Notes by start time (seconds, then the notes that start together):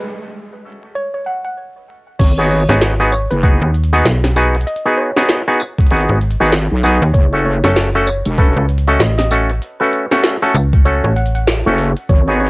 Already playing: B4
0.95 C#5
1.14 C#5
1.26 F#5
1.45 F#5
2.19 G#1 C#5, kick, closed hi-hat, crash
2.38 B3 D#4 F#4 G#4 C#5
2.50 C#5
2.69 G#1 B3 D#4 F#4 G#4 C#5, snare, closed hi-hat
2.81 snare, closed hi-hat
3.00 B3 D#4 F#4 G#4
3.12 C#5, tambourine
3.31 F#1 B4, closed hi-hat
3.43 B3 D#4 F#4 G#4 B4, kick, closed hi-hat
3.62 D#2
3.74 closed hi-hat
3.84 closed hi-hat
3.93 B3 D#4 F#4 G#4, closed hi-hat
3.99 closed hi-hat
4.05 B1, snare, closed hi-hat
4.24 snare
4.36 B3 D#4 F#4 G#4, closed hi-hat, tambourine
4.55 closed hi-hat
4.61 closed hi-hat
4.67 D#5, closed hi-hat
4.76 closed hi-hat
4.86 B3 D#4 F#4 G#4
4.98 C#5
5.17 B3 D#4 F#4 G#4, snare, closed hi-hat
5.20 closed hi-hat
5.23 closed hi-hat
5.26 snare, closed hi-hat
5.29 closed hi-hat
5.48 B3 D#4 F#4 G#4
5.60 tambourine
5.78 kick, closed hi-hat
5.81 closed hi-hat
5.87 closed hi-hat
5.91 G#1 B3 D#4 F#4 G#4, closed hi-hat
5.97 closed hi-hat
6.01 closed hi-hat
6.09 G#1
6.21 closed hi-hat
6.31 closed hi-hat
6.40 G#1 B3 D#4 F#4 G#4
6.46 closed hi-hat
6.52 snare, closed hi-hat
6.71 B1
6.83 B3 D#4 F#4 G#4, closed hi-hat, tambourine
7.02 D#2, closed hi-hat
7.14 F#1 C#5, kick, closed hi-hat
7.33 A3 C#4 F#4 A4 C#5
7.45 C#5
7.64 F#1 A3 C#4 F#4 A4 C#5, snare, closed hi-hat
7.76 snare, closed hi-hat
7.95 A3 C#4 F#4 A4
8.07 C#5, tambourine
8.25 E1, closed hi-hat
8.38 A3 C#4 F#4 A4 B4, kick, closed hi-hat
8.57 C#2 B4
8.69 closed hi-hat
8.78 closed hi-hat
8.88 A3 C#4 F#4 A4 D#5, closed hi-hat
8.99 A1 D#5, snare, closed hi-hat
9.18 D#5, snare
9.31 A3 C#4 F#4 A4, closed hi-hat, tambourine
9.50 closed hi-hat
9.62 closed hi-hat
9.80 A3 C#4 F#4 A4 B4
9.93 closed hi-hat
10.12 A3 C#4 F#4 A4, snare, closed hi-hat
10.24 snare, closed hi-hat
10.42 A3 C#4 F#4 A4
10.55 C#2, closed hi-hat, tambourine
10.73 kick, closed hi-hat
10.85 A3 C#4 F#4 A4 C#5, closed hi-hat
11.04 A1 C#5
11.16 F#5, closed hi-hat
11.26 closed hi-hat
11.35 F#5, closed hi-hat
11.47 snare, closed hi-hat
11.66 F#1 A3 C#4 F#4 A4
11.78 closed hi-hat
11.97 closed hi-hat
12.09 G#1 C#5, kick, closed hi-hat
12.28 B3 D#4 F#4 G#4 C#5
12.40 C#5